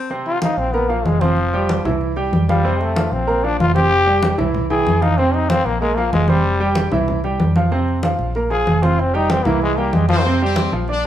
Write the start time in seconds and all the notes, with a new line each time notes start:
Already playing: C4
0.10 C3 C4 C5, high conga
0.26 F4, high conga
0.42 F3 D#4 F4 F5, high conga
0.57 A#1 C4, high conga
0.73 A#3 B3 A#4 A#5, high conga
0.89 F3 A#3 F4 F5, high conga
1.05 F1 G#3, high conga
1.21 F3 C4 C5 C6, high conga
1.36 high conga
1.53 G3 G4 G5, high conga
1.69 high conga
1.85 C2 E3 E4 E5, high conga, low conga
2.01 high conga
2.16 G3 G4 G5, high conga
2.32 F2, high conga
2.48 F3 G3 F4 F5, high conga
2.64 C3 C4 C5, high conga
2.81 A3, high conga
2.96 F3 F4 F5, high conga
3.12 A#1 C4, high conga
3.27 A#3 A#4 A#5, high conga
3.44 F3 D4 F4 F5, high conga
3.60 F1 F4, high conga
3.75 C4 G4 C5 C6, high conga
3.91 high conga
4.06 G3 G4 G5, high conga
4.23 high conga
4.38 C2 E3 E4 E5, high conga, low conga
4.54 high conga, low conga
4.70 E3 E4 G#4 G5, high conga
4.86 F2, high conga
5.02 F3 D#4 F4 F5, high conga
5.17 C3 C4 C5, high conga
5.34 D#4, high conga
5.49 F3 C4 F4 F5, high conga
5.65 A#1 A#3, high conga
5.81 G#3 A#3 A#4 A#5, high conga
5.96 F3 A#3 F4 F5, high conga
6.13 F1 G#3, high conga
6.28 G3 C4 C5 C6, high conga
6.44 high conga
6.60 G3 G4 G5, high conga
6.75 high conga
6.92 C2 E3 E4 E5, high conga, low conga
7.08 high conga, low conga
7.24 G3 G4 G5, high conga
7.40 F2, high conga
7.56 F3 F4 F5, high conga
7.71 C3 C4 C5, high conga
7.88 high conga
8.03 F3 F4 F5, high conga
8.19 A#1, high conga
8.35 A#3 A#4 A#5, high conga
8.50 F3 F4 G#4 F5, high conga
8.67 F1, high conga
8.82 C4 F4 C5 C6, high conga
8.99 C4, high conga
9.13 G3 D#4 G4 G5, high conga
9.30 C4, high conga
9.45 C2 E3 A#3 E4 E5, high conga, low conga
9.62 G#3, high conga
9.78 G3 A#3 G4 G5, high conga
9.93 F2 G#3, high conga
10.09 F3 C4 F4 C5 F5, high conga
10.25 C3 C4 C5, high conga
10.40 G3 C4 G4 C5 G5, high conga
10.56 high conga
10.72 A#1 F3 F4 F5, high conga
10.88 D4 D5 D6, high conga
11.03 high conga